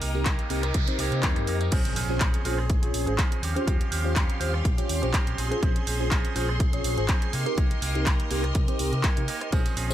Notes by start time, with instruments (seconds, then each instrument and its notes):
Already playing: string machine A#4 D#5 A#5, noise sweep
0.01 fingered electric bass C2, clean electric guitar A#3 D#4 G4, open hi-hat
0.14 tine electric piano C4 D#4 G4 A#4, tambourine
0.25 clean electric guitar A#3 D#4 G4, kick, clap, closed hi-hat, tambourine
0.39 closed hi-hat, tambourine
0.49 fingered electric bass C2, clean electric guitar A#3 D#4 G4, tine electric piano C4 D#4 G4 A#4, open hi-hat
0.62 clean electric guitar D#4 G4, cross-stick, closed hi-hat, tambourine
0.74 fingered electric bass C3, kick, closed hi-hat
0.87 tine electric piano C4 D#4 G4 C5, muted fingered electric bass stroke, closed hi-hat, tambourine
0.98 fingered electric bass C2, clean electric guitar A#3 D#4 G4, open hi-hat
1.12 fingered electric bass C3, closed hi-hat, tambourine
1.23 fingered electric bass D#2, clean electric guitar A#3 D#4 G4, tine electric piano C4 D#4 A#4, kick, clap, closed hi-hat, tambourine
1.36 fingered electric bass G2, cross-stick, closed hi-hat, tambourine
1.47 fingered electric bass F2, clean electric guitar A#3 D#4 G4, open hi-hat
1.61 closed hi-hat, tambourine
1.72 fingered electric bass A#1, clean electric guitar F3 C4 C#4 G#4, tine electric piano C#4 F4, string machine G#4 C6, kick, closed hi-hat, crash, impact
1.85 closed hi-hat
1.96 fingered electric bass A#1, clean electric guitar F3 C4 C#4 G#4, open hi-hat
2.09 tine electric piano C#4 F4 G#4 C5
2.20 clean electric guitar F3 C4 C#4 G#4, kick, clap, closed hi-hat
2.34 closed hi-hat
2.45 fingered electric bass A#1, clean electric guitar F3 C4 C#4 G#4, tine electric piano C#4 F4 G#4 C5, open hi-hat
2.58 clean electric guitar C4 C#4 G#4, cross-stick
2.70 kick, closed hi-hat
2.82 fingered electric bass A#1, clean electric guitar C4 C#4 G#4, tine electric piano C#4 F4 G#4 C#5, closed hi-hat
2.94 fingered electric bass A#1, open hi-hat
3.06 fingered electric bass G#1, clean electric guitar C4 C#4 G#4, tine electric piano C#4 F4 G#4 C5, closed hi-hat
3.18 clean electric guitar F3 C4 C#4 G#4, kick, clap, closed hi-hat
3.32 closed hi-hat
3.42 fingered electric bass D#2, clean electric guitar F3 C4 C#4 G4, string machine G4 F5, open hi-hat
3.56 clean electric guitar C4 C#4 G4, tine electric piano C#4 F4 G4 C5, closed hi-hat
3.67 fingered electric bass D#2, clean electric guitar F3 C4 C#4 G4, tine electric piano G4, kick, closed hi-hat
3.81 closed hi-hat
3.91 fingered electric bass D#2, clean electric guitar F3 C4 C#4 G4, open hi-hat
4.04 tine electric piano C#4 F4 G4 C5
4.15 clean electric guitar F3 C4 C#4 G4, kick, clap, closed hi-hat
4.30 closed hi-hat
4.40 fingered electric bass D#2, clean electric guitar F3 C4 C#4 G4, tine electric piano C#4 F4 G4 C5, open hi-hat
4.53 clean electric guitar C4 C#4 G4, cross-stick
4.65 fingered electric bass A#1, kick, closed hi-hat
4.78 clean electric guitar C4 C#4 G4, tine electric piano C#4 F4 G4 C#5, muted fingered electric bass stroke, closed hi-hat
4.89 fingered electric bass D#2, open hi-hat
5.02 fingered electric bass A#1, clean electric guitar C4 C#4 G4, tine electric piano C#4 F4 G4 C5, closed hi-hat
5.13 clean electric guitar F3 C4 C#4 G4, kick, clap, closed hi-hat
5.27 fingered electric bass A#1, closed hi-hat
5.38 fingered electric bass A#1, clean electric guitar F3 C4 C#4 G#4, string machine G#4, open hi-hat
5.51 clean electric guitar C4 C#4 G#4, tine electric piano C#4 F4 G#4 C5, closed hi-hat
5.62 fingered electric bass A#1, clean electric guitar F3 C4 C#4 G#4, tine electric piano C5, kick, closed hi-hat
5.76 closed hi-hat
5.87 fingered electric bass A#1, clean electric guitar F3 C4 C#4 G#4, open hi-hat
6.00 tine electric piano C#4 F4 G#4 C5
6.11 clean electric guitar F3 C4 C#4 G#4, kick, clap, closed hi-hat
6.25 closed hi-hat
6.35 fingered electric bass A#1, clean electric guitar F3 C4 C#4 G#4, tine electric piano C#4 F4 G#4 C5, open hi-hat
6.49 clean electric guitar C4 C#4 G#4, cross-stick
6.60 kick, closed hi-hat
6.73 fingered electric bass A#1, clean electric guitar C4 C#4 G#4, tine electric piano C#4 F4 G#4 C#5, closed hi-hat
6.84 fingered electric bass A#1, open hi-hat
6.97 fingered electric bass G#1, clean electric guitar C4 C#4 G#4, tine electric piano C#4 F4 G#4 C5, closed hi-hat
7.08 clean electric guitar F3 C4 C#4 G#4, kick, clap, closed hi-hat
7.22 closed hi-hat
7.33 fingered electric bass C3, clean electric guitar A#3 D#4 G4, string machine A#4 D#5, open hi-hat
7.46 tine electric piano C4 D#4 G4 A#4, clean electric guitar D#4 G4, closed hi-hat
7.57 fingered electric bass C2, clean electric guitar A#3 D#4 G4, tine electric piano C4 G4, kick, closed hi-hat
7.71 closed hi-hat
7.81 fingered electric bass C2, clean electric guitar A#3 D#4 G4, open hi-hat
7.95 tine electric piano C4 D#4 G4 A#4, closed hi-hat
8.06 clean electric guitar A#3 D#4 G4, kick, clap, closed hi-hat
8.20 closed hi-hat
8.30 fingered electric bass C2, clean electric guitar A#3 D#4 G4, tine electric piano C4 D#4 G4 A#4, open hi-hat
8.43 clean electric guitar D#4 G4, cross-stick, closed hi-hat
8.55 fingered electric bass C3, kick, closed hi-hat
8.68 tine electric piano C4 D#4 G4 C5, clean electric guitar D#4 G4, muted fingered electric bass stroke, closed hi-hat
8.79 fingered electric bass C2, tine electric piano C4 D#4 G4 A#4, open hi-hat
8.93 fingered electric bass C3, clean electric guitar D#4 G4, closed hi-hat
9.03 clean electric guitar A#3 D#4 G4, kick, clap, closed hi-hat
9.17 fingered electric bass C3, tine electric piano C4 D#4 G4 A#4, closed hi-hat
9.28 clean electric guitar A#3 D#4 G4, open hi-hat
9.41 clean electric guitar D#4 G4, cross-stick, closed hi-hat
9.52 fingered electric bass A#1, clean electric guitar F3 C4 C#4 G#4, tine electric piano C#4 F4 G#4 C5, string machine G#4, kick, closed hi-hat, tambourine
9.66 closed hi-hat, tambourine
9.76 fingered electric bass A#1, clean electric guitar F3 C4 C#4 G#4, open hi-hat
9.90 tine electric piano C#4 F4 G#4 C5, tambourine